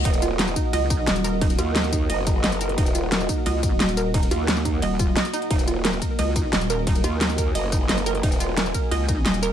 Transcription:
<<
  \new Staff \with { instrumentName = "Ambient pad" } { \time 4/4 \key ees \minor \tempo 4 = 176 << { ges''1~ | ges''1~ | ges''1~ | ges''1 |
aes''1~ | aes''1~ | aes''1 | } \\ { <bes ges' ees''>1~ | <bes ges' ees''>1~ | <bes ges' ees''>1~ | <bes ges' ees''>1~ |
<bes ges' ees''>1~ | <bes ges' ees''>1~ | <bes ges' ees''>1 | } >> }
  \new Staff \with { instrumentName = "Synth arpeggio sound" } { \time 4/4 \key ees \minor ees'8 f'8 bes'8 ees'8 ees''8 ees'8 ees''8 bes'8 | ees'8 f'8 bes'8 ees'8 ees''8 ees'8 ees''8 bes'8 | ees'8 f'8 bes'8 ees'8 ees''8 ees'8 ees''8 bes'8 | ees'8 f'8 bes'8 ees'8 ees''8 f'8 ees''8 ees'8 |
ees'8 f'8 bes'8 bes'8 ees''8 ees'8 ees''8 bes'8 | ees'8 f'8 bes'8 bes'8 ees''8 ees'8 ees''8 bes'8 | ees'8 f'8 bes'8 bes'8 ees''8 ees'8 ees''8 bes'8 | }
  \new Staff \with { instrumentName = "Wobble bass" } { \clef bass \time 4/4 \key ees \minor ees,,4. r2 r8 | r8 ees,4. ges,,4 ges,,4 | ees,,4. r2 r8 | r8 ees,4. r2 |
ees,,4. r2 r8 | r8 ees,4. ges,,4 ges,,4 | ees,,4. r2 r8 | }
  \new Staff \with { instrumentName = "Wobble bass" } { \clef bass \time 4/4 \key ees \minor r2 des,4 ees,,4~ | ees,,8 r2. r8 | r2 des,4 ees,,4~ | ees,,8 r4. ees,,4 r4 |
r2 des,4 ees,,4~ | ees,,8 r2. r8 | r2 des,4 ees,,4 | }
  \new DrumStaff \with { instrumentName = "Drums" } \drummode { \time 4/4 <hh bd cymr>16 <hh tamb>16 <hh tamb>8 <hh cymr sn>16 tamb16 <hh bd tamb>8 <hh cymr>8 <hh bd tamb>8 <hh cymr sn>16 <hh tamb>16 <hh tamb>8 | <hh bd cymr>16 <hh tamb>16 <hh tamb>8 <hh cymr sn>16 <sn tamb>16 <hh bd tamb>8 <hh cymr>8 <hh bd tamb>8 <hh cymr sn>16 <hh tamb>16 <hh tamb>16 hh16 | <hh bd cymr>16 <hh tamb>16 <hh tamb>8 <hh cymr sn>16 tamb16 <hh bd tamb>8 <hh cymr>8 <hh bd tamb>8 <hh cymr sn>16 <hh tamb>16 <hh tamb>8 | <hh bd cymr>16 <hh tamb>16 <hh tamb>8 <hh cymr sn>16 <sn tamb>16 <hh bd tamb>8 <hh cymr>8 <hh bd tamb>8 <hh cymr sn>16 <hh tamb>16 <hh tamb>16 hh16 |
<hh bd cymr>16 <hh tamb>16 <hh tamb>8 <hh cymr sn>16 tamb16 <hh bd tamb>8 <hh cymr>8 <hh bd tamb>8 <hh cymr sn>16 <hh tamb>16 <hh tamb>8 | <hh bd cymr>16 <hh tamb>16 <hh tamb>8 <hh cymr sn>16 <sn tamb>16 <hh bd tamb>8 <hh cymr>8 <hh bd tamb>8 <hh cymr sn>16 <hh tamb>16 <hh tamb>16 hh16 | <hh bd cymr>16 <hh tamb>16 <hh tamb>8 <hh cymr sn>16 tamb16 <hh bd tamb>8 <hh cymr>8 <hh bd tamb>8 <hh cymr sn>16 <hh tamb>16 <hh tamb>8 | }
>>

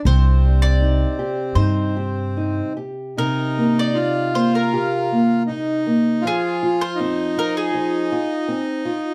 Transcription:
<<
  \new Staff \with { instrumentName = "Mandolin" } { \time 4/4 \key c \minor \tempo 4 = 80 c''8. d''4~ d''16 c''4. r8 | bes'8. d''8. c''16 bes'4.~ bes'16 r8 | aes'8. c''8. bes'16 aes'4.~ aes'16 r8 | }
  \new Staff \with { instrumentName = "Accordion" } { \time 4/4 \key c \minor c'2.~ c'8 r8 | ees'4 f'2 ees'4 | f'4 ees'2. | }
  \new Staff \with { instrumentName = "Nylon-string guitar" } { \time 4/4 \key c \minor c8 g8 ees'8 g'8 ees'8 g'8 ees'8 g'8 | c8 bes8 ees'8 bes8 g'8 bes8 ees'8 bes8 | f8 f'8 c'8 f'8 f8 f'8 c'8 f'8 | }
  \new Staff \with { instrumentName = "Upright bass" } { \clef bass \time 4/4 \key c \minor c,2 g,2 | r1 | r1 | }
>>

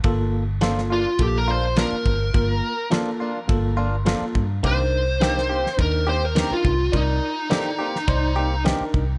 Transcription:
<<
  \new Staff \with { instrumentName = "Lead electric guitar" } { \time 4/4 \key g \minor \tempo 4 = 104 r4. f'8 g'16 bes'16 c''8 bes'4~ | bes'4 r2. | c''2 bes'8 c''16 bes'8 f'8. | ees'2. r4 | }
  \new Staff \with { instrumentName = "Tine electric piano" } { \time 4/4 \key g \minor <bes f' a'>8 r8 <bes f' a'>8 r8 <bes f' a'>8 r8 <bes f' bes'>8 r8 | <bes f' bes'>8 r8 <bes f' a'>8 r8 <bes f' a'>8 r8 <bes f' a'>8 r8 | <d' ees' bes'>8 r8 <d' ees' bes'>8 r8 <d' ees' bes'>8 r8 <d' ees' bes'>8 r8 | <ees' bes' d''>8 r8 <ees' a' d''>8 r8 <ees' c'' d''>8 r8 <d' ees' bes'>8 r8 | }
  \new Staff \with { instrumentName = "Clean electric guitar" } { \time 4/4 \key g \minor r4 <f bes d' f'>8 <bes d' f'>8 r8 <bes d' f'>8 <f bes d' f'>8 r8 | r4 <f bes d' f'>8 <bes d' f'>8 r8 <bes d' f'>8 <f bes d' f'>8 r8 | <ees bes c' g'>8 r8 <ees bes c' g'>8 <bes c' g'>8 r8 <bes c' g'>8 <ees bes c' g'>8 r8 | r4 <ees bes c' g'>8 <bes c' g'>8 r8 <bes c' g'>8 <ees bes c' g'>8 r8 | }
  \new Staff \with { instrumentName = "Fingered electric bass" } { \clef bass \time 4/4 \key g \minor g,,2 bes,,4~ bes,,16 r16 g,,8 | g,,8 r4. g,,4~ g,,16 r16 g,8 | c,2 ees,4~ ees,16 r16 c,8 | c,8 r4. c,4~ c,16 r16 c,8 | }
  \new DrumStaff \with { instrumentName = "Drums" } \drummode { \time 4/4 <bd rb>4 <rb sn>16 sn8. <bd rb>4 <rb sn>8 bd8 | <bd rb>4 <rb sn>4 <bd rb>4 <rb sn>8 bd8 | <bd rb>4 <rb sn>16 sn8 sn16 <bd rb>4 <rb sn>8 bd8 | <bd rb>4 <rb sn>8. sn16 <bd rb>4 <rb sn>8 bd8 | }
>>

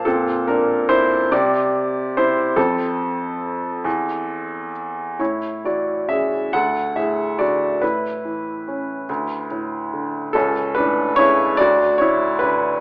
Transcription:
<<
  \new Staff \with { instrumentName = "Upright piano" } { \time 6/8 \key a \phrygian \tempo 4. = 47 <c' a'>8 <d' bes'>8 <e' c''>8 <g' d''>4 <e' c''>8 | <c' a'>2~ <c' a'>8 r8 | \key a \major <e' cis''>8 <fis' d''>8 <gis' e''>8 <a' fis''>8 <gis' e''>8 <fis' d''>8 | <e' b'>2 r4 |
<cis' a'>8 <d' b'>8 <e' cis''>8 <fis' d''>8 <e' cis''>8 <d' b'>8 | }
  \new Staff \with { instrumentName = "Upright piano" } { \clef bass \time 6/8 \key a \phrygian bes,4. c4. | f,4. e,4. | \key a \major a,8 e8 cis'8 d,8 a,8 d8 | a,8 e8 cis'8 d,8 a,8 d8 |
cis,8 a,8 cis8 d,8 a,8 d8 | }
>>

